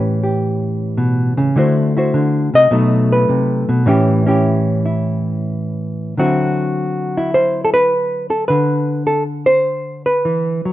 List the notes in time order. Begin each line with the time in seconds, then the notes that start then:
Already playing: A2 E3 C#4 G4 B4
0.23 G4
0.97 B2
1.37 C#3
1.56 D3 A3 E4 F#4 C5
1.97 E4 F#4 C5
2.14 D3
2.54 C3 D#5
2.71 B2 F#3 A3 D#4
3.12 B4
3.29 C3
3.69 B2
3.86 A2 E3 C#4 E4 G4
4.27 C#4 E4 G4
4.86 E4
6.17 D3 F#3 C4 E4 F#4
7.17 E4
7.34 C5
7.65 A4
7.74 B4
8.30 A4
8.48 D3 B4
9.07 A4
9.46 C5
10.06 B4
10.25 E3
10.65 F#3